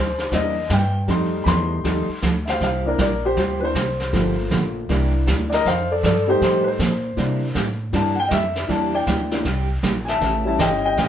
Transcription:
Already playing: upright bass D2, upright piano C5
0.18 snare
0.32 upright bass E2, steel-string acoustic guitar C3 G3 A#3 E4 G4, upright piano E3 A#3 D4 D#5, brush sweep, kick, snare
0.70 upright bass G2, steel-string acoustic guitar C3 G3 A#3 E4 G4, upright piano G5, kick, snare, hi-hat pedal
1.07 upright bass F2, steel-string acoustic guitar F3 C4 D#4 A4, upright piano G3 A3 D#4 C6, brush sweep, kick, snare
1.44 upright bass E2, steel-string acoustic guitar F3 C4 D#4 A4, upright piano B5, kick, snare, hi-hat pedal
1.48 upright piano C6
1.84 upright bass D#2, steel-string acoustic guitar F3 C4 D#4 A4, upright piano G3 A3 D#4, brush sweep, kick, snare
2.08 muted upright bass stroke
2.22 upright bass D2, steel-string acoustic guitar F3 C4 D#4 A4, kick, snare, hi-hat pedal
2.45 upright piano C5 E5, snare
2.50 upright piano F5
2.60 upright bass C2, steel-string acoustic guitar C3 G3 A#3 E4 G4, upright piano C5 F5, brush sweep, kick, snare
2.85 upright piano E3 A#3 D4 A#4 D5
2.98 upright bass A#1, steel-string acoustic guitar C3 G3 A#3 E4 G4, upright piano A#4 D5, kick, snare, hi-hat pedal
3.25 upright piano G4 C5
3.36 upright bass D2, steel-string acoustic guitar C3 G3 A#3 E4 G4, upright piano G4 C5, brush sweep, kick, snare
3.60 upright piano E3 A#3 D4 B4
3.64 upright piano C5
3.75 upright bass C2, steel-string acoustic guitar C3 G3 A#3 E4 G4, kick, snare, hi-hat pedal
4.00 snare
4.12 upright bass G1, steel-string acoustic guitar D3 F3 A#3 D4 G4, upright piano F3 A3 A#3, brush sweep, kick, snare
4.51 upright bass A#1, steel-string acoustic guitar D3 F3 A#3 D4 G4, kick, snare, hi-hat pedal
4.89 upright bass C2, steel-string acoustic guitar C3 G3 A#3 E4 G4, upright piano E3 A#3 D4, brush sweep, kick, snare
5.27 upright bass D2, steel-string acoustic guitar C3 G3 A#3 E4 G4, kick, snare, hi-hat pedal
5.50 upright piano A#4 D5, snare
5.54 upright piano D#5
5.65 upright bass F2, steel-string acoustic guitar F3 C4 D#4 A4, upright piano C5 F5, brush sweep, kick, snare
5.91 upright piano A4 D5
6.03 upright bass G2, steel-string acoustic guitar F3 C4 D#4 A4, upright piano A4 D5, kick, snare, hi-hat pedal
6.27 upright piano G3 A3 D#4 G4 C5
6.41 upright bass A2, steel-string acoustic guitar F3 C4 D#4 A4, upright piano G4 C5, brush sweep, kick, snare
6.63 upright piano B4
6.68 upright piano C5
6.79 upright bass A#2, steel-string acoustic guitar F3 C4 D#4 A4, kick, snare, hi-hat pedal
7.16 steel-string acoustic guitar C3 G3 A#3 E4 G4, upright bass C3, upright piano E3 A#3 D4, brush sweep, kick, snare
7.54 upright bass A2, steel-string acoustic guitar C3 G3 A#3 E4 G4, kick, snare, hi-hat pedal
7.93 upright bass G2, steel-string acoustic guitar C3 G3 A#3 E4 G4, upright piano E3 A#3 D4 A5, brush sweep, kick, snare
8.15 upright piano F#5
8.20 upright piano G5
8.28 upright bass F2, steel-string acoustic guitar C3 G3 A#3 E4 G4, upright piano D#5, kick, snare, hi-hat pedal
8.33 upright piano E5
8.55 snare
8.68 upright bass E2, steel-string acoustic guitar C3 G3 A#3 E4 G4, upright piano E3 A#3 D4 A5, brush sweep, kick, snare
8.95 upright piano D5 G5
9.07 upright bass D2, steel-string acoustic guitar C3 G3 A#3 E4 G4, kick, snare, hi-hat pedal
9.31 upright piano E3 A#3 D4, snare
9.45 upright bass C2, steel-string acoustic guitar C3 G3 A#3 E4 G4, brush sweep, kick, snare
9.83 upright bass A#1, steel-string acoustic guitar C3 G3 A#3 E4 G4, kick, snare, hi-hat pedal
10.05 upright piano E5 G#5, snare
10.09 upright piano A5
10.21 upright bass A1, steel-string acoustic guitar C#3 E3 A3 C#4 G4, upright piano E5 A5, brush sweep, kick, snare
10.45 upright piano G3 C#4 E4 E5 A5
10.58 upright bass G1, steel-string acoustic guitar C#3 E3 A3 C#4 G4, upright piano D#5 G5, kick, snare, hi-hat pedal
10.85 upright piano D#5 G5
10.97 upright bass A1, steel-string acoustic guitar C#3 E3 A3 C#4 G4, upright piano D#5 G5, brush sweep, kick, snare

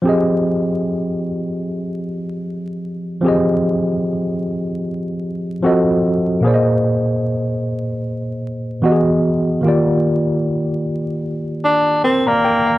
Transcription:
0.02 tine electric piano F3 C4 G4
0.07 tine electric piano G#4 D#5
3.21 tine electric piano F3 C4 G4
3.26 tine electric piano G#4 D#5
5.62 tine electric piano F3 C4 F#4 A4 D#5
6.41 tine electric piano A#2 A#3 G#4
6.46 tine electric piano C5 D5
6.54 tine electric piano D#5
8.82 tine electric piano E3 B3 F#4 G4 D#5
8.91 tine electric piano G#4
9.61 tine electric piano D#3 A#3 F4
9.66 tine electric piano G4 D5
11.65 tenor saxophone D4
12.04 tenor saxophone C4, tine electric piano A#4 G5
12.27 tenor saxophone A#3, tine electric piano D5 A#5
12.45 tine electric piano A#4 G5
12.67 tine electric piano F5

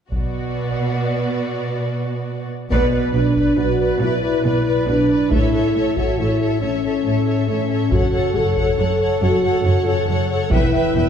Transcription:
0.11 double bass section B1, cello section B2, viola section B3, violin section F#4 D5, taiko
2.70 double bass section B1, cello section B2, french horn section B3, violin section B4 D5, viola section B4, taiko
2.92 viola section B4, violin section B4 D5
3.13 double bass section B1, cello section B2, french horn section D4, violin section B4 D5, viola section B4
3.35 viola section B4, violin section B4 D5, taiko
3.57 double bass section B1, cello section B2, french horn section F#4, violin section B4 D5, viola section B4
3.80 violin section B4 D5, viola section B4
4.00 double bass section B1, cello section B2, french horn section E4, violin section B4 D5, viola section B4
4.22 violin section B4 D5, viola section B4
4.44 double bass section B1, cello section B2, violin section B4 D5, viola section B4
4.65 violin section B4 D5, viola section B4
4.87 double bass section B1, cello section B2, french horn section D4, violin section B4 D5, viola section B4
5.09 viola section B4, violin section B4 D5
5.31 double bass section A1, cello section A2, french horn section E4, viola section A4, violin section C#5 E5, taiko
5.53 viola section A4, violin section C#5 E5
5.75 double bass section A1, cello section A2, viola section A4, violin section C#5 E5
5.97 french horn section F#4, viola section A4, violin section C#5 E5, taiko
6.18 double bass section A1, cello section A2, french horn section E4, viola section A4, violin section C#5 E5
6.41 viola section A4, violin section C#5 E5
6.61 double bass section A1, cello section A2, french horn section C#4, viola section A4, violin section C#5 E5
6.84 viola section A4, violin section C#5 E5
7.05 double bass section A1, cello section A2, viola section A4, violin section C#5 E5
7.27 viola section A4, violin section C#5 E5
7.48 double bass section A1, cello section A2, french horn section C#4, viola section A4, violin section C#5 E5
7.70 viola section A4, violin section C#5 E5
7.91 double bass section F#1, cello section F#2, french horn section F#4, viola section A4, violin section C#5 F#5, taiko
8.12 viola section A4, violin section C#5 F#5
8.34 double bass section F#1, cello section F#2, french horn section A4, viola section A4, violin section C#5 F#5
8.57 viola section A4, violin section C#5 F#5, taiko
8.77 double bass section F#1, cello section F#2, viola section A4, violin section C#5 F#5
9.00 viola section A4, violin section C#5 F#5
9.20 double bass section F#1, cello section F#2, french horn section F#4, viola section A4, violin section C#5 F#5
9.43 viola section A4, violin section C#5 F#5
9.65 double bass section F#1, cello section F#2, viola section A4, violin section C#5 F#5
9.86 french horn section C#4, viola section A4, violin section C#5 F#5
10.08 double bass section F#1, cello section F#2, viola section A4, violin section C#5 F#5
10.31 viola section A4, violin section C#5 F#5
10.51 double bass section E1, cello section E2, french horn section E4, viola section B4, violin section E5 G5, taiko
10.74 viola section B4, violin section E5 G5
10.94 double bass section E1, cello section E2, viola section B4, violin section E5 G5

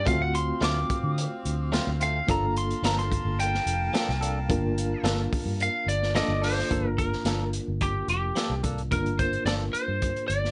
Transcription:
0.05 fingered electric bass D2, clean electric guitar F#3 A3 C4 F4, reed electric piano A3 C4 F4 F#4, horn section C4 F5, lead electric guitar F5, kick, closed hi-hat
0.22 lead electric guitar F#5
0.35 lead electric guitar C6, closed hi-hat
0.61 fingered electric bass D2, clean electric guitar F#3 A3 C4 F4, lead electric guitar D6, snare, closed hi-hat
0.90 muted fingered electric bass stroke, kick, closed hi-hat
1.04 fingered electric bass D3
1.18 closed hi-hat
1.45 fingered electric bass D2, closed hi-hat
1.72 clean electric guitar F#3 A3 C4 F4, snare, closed hi-hat
1.87 fingered electric bass D2
2.00 clean electric guitar A3 C4 F4, lead electric guitar F5, closed hi-hat
2.27 fingered electric bass G1, clean electric guitar F3 A#3 D4 A4, reed electric piano A#3 D4 F4 A4, horn section A#3 A5, lead electric guitar A#5, kick, closed hi-hat
2.56 lead electric guitar C6, closed hi-hat
2.70 closed hi-hat
2.83 fingered electric bass G1, clean electric guitar F3 A#3 D4 A4, lead electric guitar A#5, snare, closed hi-hat
2.99 lead electric guitar C6, closed hi-hat
3.12 kick, closed hi-hat
3.25 fingered electric bass G1
3.40 lead electric guitar G5, closed hi-hat
3.55 snare
3.66 fingered electric bass F1, closed hi-hat
3.94 clean electric guitar F3 A#3 D4 A4, snare, closed hi-hat
4.09 fingered electric bass C2, snare
4.21 clean electric guitar A#3 D4 A4, closed hi-hat
4.49 fingered electric bass G1, reed electric piano A#3 D4 F4 A#4, kick, closed hi-hat
4.78 closed hi-hat
5.03 fingered electric bass G1, clean electric guitar F3 A#3 D4 A4, snare, closed hi-hat
5.33 muted fingered electric bass stroke, kick, open hi-hat
5.46 fingered electric bass G2
5.60 lead electric guitar F5, closed hi-hat
5.86 fingered electric bass G1, lead electric guitar D5, closed hi-hat
6.03 snare
6.15 clean electric guitar F3 A#3 D4 A4, reed electric piano A#3 D4 F4 A4, lead electric guitar D5 D#5, snare, closed hi-hat
6.28 fingered electric bass G1
6.42 clean electric guitar A#3 D4 A4, lead electric guitar C5, open hi-hat
6.59 snare
6.70 fingered electric bass G1, clean electric guitar F3 A#3 D4 A4, reed electric piano A#3 D4 F4 A#4, kick, closed hi-hat
6.88 lead electric guitar A#4
6.98 lead electric guitar A#4, kick, closed hi-hat
7.13 snare
7.25 fingered electric bass G1, clean electric guitar F3 A#3 D4 A4, snare, closed hi-hat
7.53 closed hi-hat
7.68 fingered electric bass G1
7.81 lead electric guitar G4, kick, closed hi-hat
8.08 fingered electric bass F1, lead electric guitar G4, closed hi-hat
8.36 clean electric guitar F3 A#3 D4 A4, snare, closed hi-hat
8.50 fingered electric bass C2
8.63 clean electric guitar A#3 D4 A4, kick, closed hi-hat
8.78 closed hi-hat
8.91 fingered electric bass G1, reed electric piano A#3 D4 F4 A#4, lead electric guitar A#4, kick, closed hi-hat
9.06 closed hi-hat
9.19 lead electric guitar C5, kick, closed hi-hat
9.33 closed hi-hat
9.45 fingered electric bass G1, clean electric guitar F3 A#3 D4 A4, lead electric guitar D5, snare, closed hi-hat
9.73 lead electric guitar C5, muted fingered electric bass stroke, closed hi-hat
9.88 fingered electric bass G2
10.02 kick, closed hi-hat
10.16 closed hi-hat
10.28 fingered electric bass G1, lead electric guitar D5, closed hi-hat
10.45 snare

